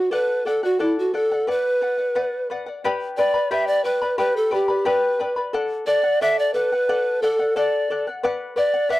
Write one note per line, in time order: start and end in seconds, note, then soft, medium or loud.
0.00 0.13 F#4 medium
0.00 0.10 D5 soft
0.00 0.11 F#5 medium
0.11 0.44 A4 medium
0.11 0.48 B4 medium
0.11 0.45 D5 medium
0.11 0.46 F#5 medium
0.45 0.63 A4 medium
0.45 0.63 D5 medium
0.45 0.62 F#5 medium
0.63 0.80 F#4 medium
0.63 0.79 D5 soft
0.63 0.79 F#5 medium
0.79 0.96 E4 medium
0.79 1.12 A4 medium
0.79 1.13 D5 medium
0.79 1.13 F#5 medium
0.99 1.14 F#4 medium
1.14 1.31 A4 medium
1.14 1.47 A4 medium
1.14 1.31 D5 medium
1.14 1.30 F#5 medium
1.32 1.47 D5 soft
1.32 1.47 F#5 soft
1.47 1.80 B4 medium
1.47 2.47 B4 medium
1.47 1.80 D5 medium
1.47 1.81 F#5 medium
1.81 1.99 B4 medium
1.81 1.98 D5 medium
1.81 1.97 F#5 medium
1.98 2.15 D5 soft
1.98 2.15 F#5 soft
2.15 2.49 B4 medium
2.15 2.50 D5 medium
2.15 2.50 F#5 medium
2.50 2.67 B4 medium
2.50 2.67 D5 medium
2.50 2.65 F#5 medium
2.66 2.84 D5 soft
2.66 2.84 F#5 soft
2.84 3.18 G4 medium
2.84 3.17 B4 medium
2.84 3.17 D5 medium
2.84 3.17 G5 medium
2.84 3.18 B5 medium
3.17 3.34 B4 medium
3.17 3.49 D5 medium
3.17 3.33 D5 medium
3.17 3.35 G5 medium
3.17 3.33 B5 medium
3.34 3.51 B4 soft
3.34 3.50 D5 soft
3.34 3.50 B5 medium
3.51 3.85 G4 medium
3.51 3.84 B4 medium
3.51 3.84 D5 medium
3.51 3.69 E5 medium
3.51 3.83 G5 medium
3.51 3.84 B5 medium
3.67 3.84 D5 medium
3.84 4.16 B4 medium
3.84 4.02 B4 medium
3.84 4.01 D5 medium
3.84 4.02 G5 medium
3.84 4.00 B5 medium
4.02 4.17 B4 soft
4.02 4.18 D5 soft
4.02 4.17 B5 medium
4.18 4.52 G4 medium
4.18 4.50 B4 medium
4.18 4.38 B4 medium
4.18 4.51 D5 medium
4.18 4.50 G5 medium
4.18 4.51 B5 medium
4.36 4.55 A4 medium
4.51 4.89 G4 medium
4.51 4.69 B4 medium
4.51 4.68 D5 medium
4.51 4.69 G5 medium
4.51 4.67 B5 medium
4.68 4.85 B4 soft
4.68 4.85 D5 medium
4.68 4.85 B5 medium
4.85 5.20 G4 medium
4.85 5.19 B4 medium
4.85 5.38 B4 medium
4.85 5.19 D5 medium
4.85 5.18 G5 medium
4.85 5.20 B5 medium
5.19 5.36 B4 medium
5.19 5.36 D5 medium
5.19 5.37 G5 soft
5.19 5.35 B5 medium
5.36 5.54 B4 soft
5.36 5.53 D5 soft
5.36 5.53 B5 soft
5.53 5.86 A4 medium
5.53 5.86 D5 medium
5.53 5.87 F#5 medium
5.87 6.04 A4 medium
5.87 6.23 D5 loud
5.87 6.04 D5 medium
5.87 6.02 F#5 medium
6.03 6.21 D5 soft
6.03 6.21 F#5 medium
6.21 6.53 A4 medium
6.21 6.54 D5 medium
6.21 6.41 E5 loud
6.21 6.55 F#5 medium
6.39 6.53 D5 loud
6.54 6.71 A4 medium
6.54 7.24 B4 medium
6.54 6.72 D5 medium
6.54 6.71 F#5 medium
6.72 6.88 D5 soft
6.72 6.88 F#5 medium
6.89 7.21 A4 medium
6.89 7.22 D5 medium
6.89 7.22 F#5 medium
7.22 7.58 A4 medium
7.22 7.39 A4 medium
7.22 7.39 D5 medium
7.22 7.38 F#5 medium
7.39 7.55 D5 soft
7.39 7.56 F#5 medium
7.56 7.89 A4 medium
7.56 7.89 D5 medium
7.56 8.06 D5 medium
7.56 7.90 F#5 medium
7.90 8.06 A4 medium
7.90 8.07 D5 medium
7.90 8.06 F#5 medium
8.07 8.23 D5 soft
8.07 8.23 F#5 soft
8.23 8.55 B4 medium
8.23 8.56 D5 medium
8.23 8.56 F#5 loud
8.56 8.73 B4 medium
8.56 8.73 D5 medium
8.56 8.93 D5 medium
8.56 8.72 F#5 medium
8.74 8.89 D5 soft
8.74 8.89 F#5 medium
8.89 9.00 B4 medium
8.89 9.00 D5 medium
8.89 9.00 E5 loud
8.89 9.00 F#5 medium